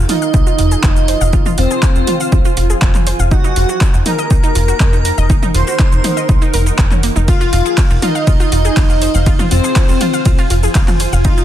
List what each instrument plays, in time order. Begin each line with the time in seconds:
Already playing: ambient pad D#4 F4 A#4 C5 F5
0.09 analog polysynth D#4, synth arpeggio sound F4, digital synth lead D#5, open hi-hat, mid tom, shaker
0.22 synth arpeggio sound F5, shaker
0.34 analog synth bass C2, synth arpeggio sound F4, kick, shaker
0.47 synth arpeggio sound F4, shaker
0.59 analog synth bass F1, synth arpeggio sound F4, open hi-hat, shaker
0.71 synth arpeggio sound G#4, shaker
0.83 analog synth bass F1, synth arpeggio sound F5, kick, clap, shaker
0.96 synth arpeggio sound F4, shaker
1.08 synth arpeggio sound C5, open hi-hat, shaker
1.13 ambient pad G#5
1.21 analog synth bass F1, synth arpeggio sound F5, shaker
1.33 synth arpeggio sound F4, kick, shaker
1.46 synth arpeggio sound F4, mid tom, shaker
1.58 analog synth bass F1, analog polysynth C4, synth arpeggio sound F4, digital synth lead C5, open hi-hat, shaker
1.71 synth arpeggio sound G#4, shaker
1.83 synth arpeggio sound F4, kick, clap, shaker
1.95 analog synth bass F1, synth arpeggio sound F4, shaker
2.07 synth arpeggio sound F4, open hi-hat, mid tom, shaker
2.20 synth arpeggio sound F5, shaker
2.32 analog synth bass C2, synth arpeggio sound F4, kick, shaker
2.45 synth arpeggio sound F4, shaker
2.57 analog synth bass F1, synth arpeggio sound F4, open hi-hat, shaker
2.70 synth arpeggio sound G#4, shaker
2.82 analog synth bass F1, synth arpeggio sound F5, kick, clap, shaker
2.95 synth arpeggio sound F4, clap, mid tom, shaker
3.07 synth arpeggio sound C5, open hi-hat, shaker
3.19 analog synth bass F1, synth arpeggio sound F5, shaker
3.31 ambient pad D#4, synth arpeggio sound D#4, analog polysynth F#4, digital synth lead F#5, kick, shaker
3.44 synth arpeggio sound D#4, shaker
3.56 analog synth bass F1, synth arpeggio sound F4, open hi-hat, shaker
3.69 synth arpeggio sound F#4, shaker
3.81 synth arpeggio sound D#4, ambient pad A#4, kick, clap, shaker
3.94 analog synth bass F1, synth arpeggio sound D#4, shaker
4.06 synth arpeggio sound D#4, analog polysynth A#4, digital synth lead A#5, open hi-hat, mid tom, shaker
4.19 synth arpeggio sound D#5, shaker
4.31 analog synth bass C2, synth arpeggio sound D#4, kick, shaker
4.43 synth arpeggio sound D#4, ambient pad F#5, shaker
4.55 analog synth bass F1, synth arpeggio sound F4, open hi-hat, shaker
4.68 synth arpeggio sound F#4, shaker
4.80 analog synth bass F1, synth arpeggio sound D#5, kick, clap, shaker
4.93 synth arpeggio sound D#4, shaker
5.05 synth arpeggio sound A#4, open hi-hat, shaker
5.18 analog synth bass F1, synth arpeggio sound D#5, shaker
5.30 synth arpeggio sound D#4, kick, shaker
5.43 synth arpeggio sound D#4, mid tom, shaker
5.54 analog synth bass F1, synth arpeggio sound F4, analog polysynth C5, digital synth lead C6, open hi-hat, shaker
5.67 synth arpeggio sound F#4, shaker
5.79 synth arpeggio sound D#4, kick, clap, shaker
5.92 analog synth bass F1, synth arpeggio sound D#4, shaker
6.04 synth arpeggio sound D#4, open hi-hat, mid tom, shaker
6.17 synth arpeggio sound D#5, shaker
6.29 analog synth bass C2, synth arpeggio sound D#4, kick, shaker
6.42 synth arpeggio sound D#4, shaker
6.54 analog synth bass F1, synth arpeggio sound A#4, open hi-hat, shaker
6.66 synth arpeggio sound D#4, shaker
6.78 analog synth bass F1, synth arpeggio sound A#4, kick, clap, shaker
6.91 synth arpeggio sound C#4, clap, mid tom, shaker
7.03 synth arpeggio sound A#3, open hi-hat, shaker
7.16 analog synth bass F1, synth arpeggio sound D#4, shaker
7.28 synth arpeggio sound F4, analog polysynth F4, ambient pad F4, digital synth lead F5, kick, ride, shaker
7.41 synth arpeggio sound F4, shaker
7.47 ambient pad C5
7.53 analog synth bass F1, synth arpeggio sound F4, open hi-hat, shaker
7.66 synth arpeggio sound G#4, shaker
7.78 synth arpeggio sound F4, kick, clap, ride, shaker
7.88 analog synth bass F1, synth arpeggio sound F4, ambient pad F5, shaker
8.02 analog polysynth D#4, synth arpeggio sound F4, digital synth lead D#5, open hi-hat, mid tom, shaker
8.15 synth arpeggio sound F5, shaker
8.27 analog synth bass C2, synth arpeggio sound F4, kick, ride, shaker
8.40 synth arpeggio sound F4, shaker
8.52 analog synth bass F1, synth arpeggio sound F4, ambient pad G#5, open hi-hat, shaker
8.65 synth arpeggio sound G#4, shaker
8.77 analog synth bass F1, synth arpeggio sound F5, kick, clap, ride, shaker
8.90 synth arpeggio sound F4, shaker
9.02 synth arpeggio sound C5, open hi-hat, shaker
9.14 analog synth bass F1, synth arpeggio sound F5, shaker
9.26 synth arpeggio sound F4, kick, ride, shaker
9.39 synth arpeggio sound F4, mid tom, shaker
9.51 analog synth bass F1, analog polysynth C4, synth arpeggio sound F4, digital synth lead C5, open hi-hat, shaker
9.64 synth arpeggio sound G#4, shaker
9.76 synth arpeggio sound F4, kick, clap, ride, shaker
9.89 analog synth bass F1, synth arpeggio sound F4, shaker
10.01 synth arpeggio sound F4, open hi-hat, mid tom, shaker
10.14 synth arpeggio sound F5, shaker
10.26 analog synth bass C2, synth arpeggio sound F4, kick, ride, shaker
10.38 synth arpeggio sound F4, shaker
10.50 analog synth bass F1, synth arpeggio sound F4, open hi-hat, shaker
10.63 synth arpeggio sound G#4, shaker
10.75 analog synth bass F1, synth arpeggio sound F5, kick, clap, ride, shaker
10.88 synth arpeggio sound F4, clap, mid tom, shaker
11.00 synth arpeggio sound C5, open hi-hat, shaker
11.13 analog synth bass F1, synth arpeggio sound F5, shaker
11.25 synth arpeggio sound D#4, analog polysynth F4, digital synth lead F5, kick, ride, shaker
11.37 synth arpeggio sound D#4, shaker